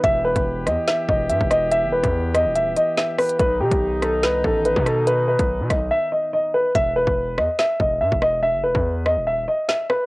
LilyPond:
<<
  \new Staff \with { instrumentName = "Grand piano" } { \time 4/4 \key e \minor \tempo 4 = 143 e''8 b'4 dis''8 e''8 dis''8 e''8 dis''8 | e''8 b'4 dis''8 e''8 dis''8 e''8 b'8 | b'8 g'4 a'8 b'8 a'8 b'8 a'8 | b'8 b'4 dis''8 e''8 dis''8 dis''8 b'8 |
e''8 b'4 dis''8 e''8 dis''8 e''8 dis''8 | e''8 b'4 dis''8 e''8 dis''8 e''8 b'8 | }
  \new Staff \with { instrumentName = "Brass ensemble" } { \time 4/4 \key e \minor <e b g'>1~ | <e b g'>1 | <dis b dis'>1~ | <dis b dis'>1 |
r1 | r1 | }
  \new Staff \with { instrumentName = "808-style bass" } { \clef bass \time 4/4 \key e \minor e,,8. e,,8. e,16 r8. e,,8 g,16 e,,8.~ | e,,16 fis,,16 e,,16 e,4 dis,,8. r4. | b,,8 b,16 b,,4~ b,,16 c,8 a,,8. b,8.~ | b,8. b,,8 b,16 b,,8 r2 |
e,,8. e,,8. e,16 r8. e,,8 g,16 e,,8.~ | e,,16 fis,,16 e,,16 e,4 dis,,8. r4. | }
  \new DrumStaff \with { instrumentName = "Drums" } \drummode { \time 4/4 <hh bd>8. <hh bd>16 r8 <hh ss>8 <hh sn>8 bd8 hh16 bd16 <hh ss>8 | hh8. <hh bd>16 r8 <hh ss>8 hh8 hh8 sn8 <hho ss>16 hh16 | <hh bd>8. <hh bd>16 r8 <hh ss>8 <hh sn>8 bd8 hh16 bd16 <hh ss>8 | hh8. <hh bd>16 r8 <hh bd ss>8 r4 r4 |
<hh bd>8. bd16 r8 ss8 sn8 bd8 r16 bd16 ss8 | r8. bd16 r8 ss8 r4 sn8 ss8 | }
>>